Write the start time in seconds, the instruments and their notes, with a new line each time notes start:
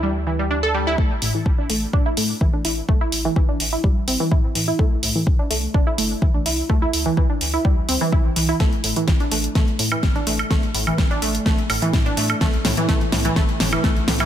Already playing: analog synth bass D2
0.03 synth pluck G3
0.27 synth pluck E3
0.39 synth pluck G3
0.51 synth pluck D4
0.63 synth pluck A4
0.74 synth pluck G3
0.87 synth pluck E4
0.98 analog synth bass A1, synth pluck A3, kick
1.22 analog synth bass A1, synth pluck A2, open hi-hat
1.35 synth pluck E3
1.46 analog synth bass A1, kick
1.58 synth pluck D4
1.70 analog synth bass A1, synth pluck A3, open hi-hat
1.93 analog synth bass A2, synth pluck D4, kick
2.06 synth pluck E4
2.17 analog synth bass A2, synth pluck A3, open hi-hat
2.41 analog synth bass A1, synth pluck E3, kick
2.53 synth pluck D4
2.65 analog synth bass A1, synth pluck E4, open hi-hat
2.89 analog synth bass A1, synth pluck A3, kick
3.01 synth pluck E4
3.12 analog synth bass A1, open hi-hat
3.25 synth pluck E3
3.36 analog synth bass A1, synth pluck E3, kick
3.49 synth pluck D4
3.60 analog synth bass A1, open hi-hat
3.73 synth pluck E4
3.84 analog synth bass A1, synth pluck G3, kick
4.08 analog synth bass A1, synth pluck C4, open hi-hat
4.20 synth pluck E3
4.31 analog synth bass A2, synth pluck E4, kick
4.55 analog synth bass A2, synth pluck E3, open hi-hat
4.68 synth pluck E4
4.79 analog synth bass C2, synth pluck A3, kick
5.03 analog synth bass C2, synth pluck A2, open hi-hat
5.15 synth pluck E3
5.27 analog synth bass C2, kick
5.39 synth pluck D4
5.50 analog synth bass C2, synth pluck A3, open hi-hat
5.74 analog synth bass G1, synth pluck D4, kick
5.87 synth pluck E4
5.98 analog synth bass G1, synth pluck A3, open hi-hat
6.22 analog synth bass C2, synth pluck E3, kick
6.34 synth pluck D4
6.46 analog synth bass C2, synth pluck E4, open hi-hat
6.69 analog synth bass D2, synth pluck A3, kick
6.82 synth pluck E4
6.93 analog synth bass D2, open hi-hat
7.06 synth pluck E3
7.17 analog synth bass D2, synth pluck E3, kick
7.30 synth pluck D4
7.41 analog synth bass D2, open hi-hat
7.54 synth pluck E4
7.65 analog synth bass D2, synth pluck G3, kick
7.89 analog synth bass D2, synth pluck C4, open hi-hat
8.01 synth pluck E3
8.12 analog synth bass C2, synth pluck E4, kick
8.36 analog synth bass C2, synth pluck E3, open hi-hat
8.49 synth pluck E4
8.60 analog synth bass A1, synth pluck A3, kick, snare, closed hi-hat
8.73 closed hi-hat
8.84 analog synth bass A1, synth pluck A2, open hi-hat
8.96 synth pluck E3, closed hi-hat
9.08 analog synth bass A1, kick, snare, closed hi-hat
9.20 synth pluck D4, closed hi-hat
9.31 analog synth bass A1, synth pluck A3, open hi-hat
9.44 closed hi-hat
9.55 analog synth bass A2, synth pluck A3, kick, snare, closed hi-hat
9.68 closed hi-hat
9.79 synth pluck A2, analog synth bass A2, open hi-hat
9.92 synth pluck E3, high woodblock
10.03 analog synth bass A1, kick, snare, closed hi-hat
10.16 synth pluck D4, closed hi-hat
10.27 analog synth bass A1, synth pluck A3, open hi-hat
10.39 closed hi-hat, high woodblock
10.51 analog synth bass A1, synth pluck A3, kick, snare, closed hi-hat
10.63 closed hi-hat
10.74 analog synth bass A1, synth pluck A2, open hi-hat
10.87 synth pluck E3, high woodblock
10.98 analog synth bass A1, kick, snare, closed hi-hat
11.11 synth pluck D4, closed hi-hat
11.22 analog synth bass A1, synth pluck A3, open hi-hat
11.35 closed hi-hat
11.46 analog synth bass A1, synth pluck A3, kick, snare, closed hi-hat
11.58 closed hi-hat
11.70 analog synth bass A1, synth pluck A2, open hi-hat, high woodblock
11.82 synth pluck E3, closed hi-hat
11.93 analog synth bass A2, kick, snare, closed hi-hat
12.06 synth pluck D4, closed hi-hat
12.17 analog synth bass A2, synth pluck A3, open hi-hat
12.30 closed hi-hat, high woodblock
12.41 analog synth bass C2, synth pluck A3, kick, snare, closed hi-hat
12.54 closed hi-hat
12.65 analog synth bass C2, synth pluck A2, snare, open hi-hat
12.77 synth pluck E3, closed hi-hat
12.89 analog synth bass C2, synth pluck A3, kick, snare, closed hi-hat
13.01 closed hi-hat
13.12 analog synth bass C2, synth pluck A2, snare, open hi-hat
13.25 synth pluck E3, closed hi-hat
13.36 analog synth bass G1, synth pluck A3, kick, snare, closed hi-hat
13.49 closed hi-hat
13.60 analog synth bass G1, synth pluck A2, snare, open hi-hat
13.73 synth pluck E3, high woodblock
13.84 analog synth bass C2, synth pluck A3, kick, snare, closed hi-hat
13.96 closed hi-hat
14.08 analog synth bass C2, synth pluck A2, snare, open hi-hat
14.20 synth pluck E3, closed hi-hat, high woodblock